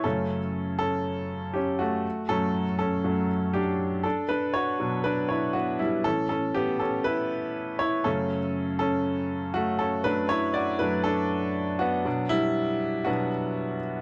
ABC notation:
X:1
M:4/4
L:1/8
Q:1/4=120
K:D
V:1 name="Grand piano"
[CA]3 [CA]3 [CG] [A,F]- | [A,F] [CA]2 [CA]3 [DG]2 | [DA] [DB] [Fc]2 [DB] [Ec] [B,F] [G,E] | A [CA] [B,G] [CA] [EB]3 [Ec] |
[CA]3 [CA]3 [A,F] [CA] | [DB] [Ec] [Fd] [DB] [DA]3 [B,F]- | [B,F] [G,E]3 [B,F]3 z |]
V:2 name="Grand piano" clef=bass
[F,,C,A,] z6 z | z [F,,F,A,] z2 [F,,F,A,] z3 | z3 [B,,F,D]4- [B,,F,D] | [A,,E,C]3 z4 z |
[F,,C,A,] z6 z | [F,,F,A,] z2 [F,,F,A,] z4 | [B,,F,D]4 [B,,F,D] z3 |]